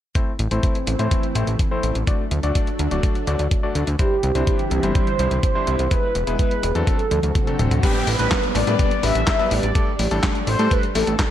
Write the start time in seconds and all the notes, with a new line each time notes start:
0.15 E3 A3 C4 E4 C5, kick, closed hi-hat
0.39 A1, closed hi-hat
0.51 A1 A3 C4 E4 C5, closed hi-hat
0.63 kick, closed hi-hat
0.75 closed hi-hat
0.87 A1, closed hi-hat
0.99 A2 A3 C4 E4 C5, closed hi-hat
1.11 kick, closed hi-hat
1.23 closed hi-hat
1.35 A1 A3 C4 E4 C5, closed hi-hat
1.47 A1, closed hi-hat
1.59 kick, closed hi-hat
1.71 A3 C4 E4 C5
1.83 A1, closed hi-hat
1.95 A1, closed hi-hat
2.07 F#3 A3 D4 F#4 D5, kick, closed hi-hat
2.31 D2, closed hi-hat
2.43 D2 A3 D4 F#4 D5, closed hi-hat
2.55 kick, closed hi-hat
2.67 closed hi-hat
2.79 D2, closed hi-hat
2.91 D1 A3 D4 F#4 D5, closed hi-hat
3.03 kick, closed hi-hat
3.15 closed hi-hat
3.27 D2 A3 D4 F#4 D5, closed hi-hat
3.39 D2, closed hi-hat
3.51 kick, closed hi-hat
3.63 A3 D4 F#4 D5
3.75 D2, closed hi-hat
3.87 D2, closed hi-hat
3.99 D3 E3 G3 C4 D4 E4 G4 C5, kick, closed hi-hat
4.23 C2, closed hi-hat
4.35 C2 G3 D4 E4 C5, closed hi-hat
4.47 G4, kick, closed hi-hat
4.59 closed hi-hat
4.71 C2, closed hi-hat
4.83 G1 G3 D4 E4 C5, closed hi-hat
4.95 C5, kick, closed hi-hat
5.07 closed hi-hat
5.19 C2 G3 D4 E4 C5, closed hi-hat
5.31 C2, closed hi-hat
5.43 C5, kick, closed hi-hat
5.55 G3 D4 E4 C5
5.67 C2, closed hi-hat
5.79 C2, closed hi-hat
5.91 G#3 B3 E4 B4, kick, closed hi-hat
6.15 E1, closed hi-hat
6.27 E1 G#3 B3 E4 B4, closed hi-hat
6.39 B4, kick, closed hi-hat
6.51 closed hi-hat
6.63 E1, closed hi-hat
6.75 E2 F#3 C4 D4 A4, closed hi-hat
6.87 D3 F#3 A3 C4 F#4 A4, kick, closed hi-hat
6.99 closed hi-hat
7.11 D2, closed hi-hat, high tom
7.23 D2, closed hi-hat
7.35 kick, closed hi-hat, mid tom
7.47 F#3 C4 D4 A4, closed hi-hat, mid tom
7.59 D1 F#3 C4 D4 A4, closed hi-hat, mid tom
7.71 D2, closed hi-hat, mid tom
7.83 G3 B3 D4 G4 B4, kick, closed hi-hat, crash, downlifter
8.07 A1 B4, open hi-hat
8.19 A1 G3 B3 D4 B4, closed hi-hat
8.31 kick, snare, clap, closed hi-hat
8.43 closed hi-hat
8.55 A1 D5, clap, open hi-hat
8.67 A2 G3 B3 D4 B4, closed hi-hat
8.79 D5, kick, closed hi-hat
8.91 closed hi-hat
9.03 A1 G3 B3 D4 B4 E5, open hi-hat
9.15 A1, closed hi-hat
9.27 kick, snare, clap, closed hi-hat
9.39 G3 B3 D4 B4
9.51 A1 D5, open hi-hat
9.63 A1, closed hi-hat
9.75 G3 A3 D4 A4, kick, closed hi-hat
9.99 A1, open hi-hat
10.11 A1 G3 A3 D4 A4, closed hi-hat
10.23 kick, snare, clap, closed hi-hat
10.35 closed hi-hat
10.47 A1 C5, open hi-hat
10.59 A2 G3 A3 D4 A4, closed hi-hat
10.71 B4, kick, closed hi-hat
10.83 closed hi-hat
10.95 A1 G3 A3 D4 A4, open hi-hat
11.07 A1, closed hi-hat
11.19 kick, snare, clap, closed hi-hat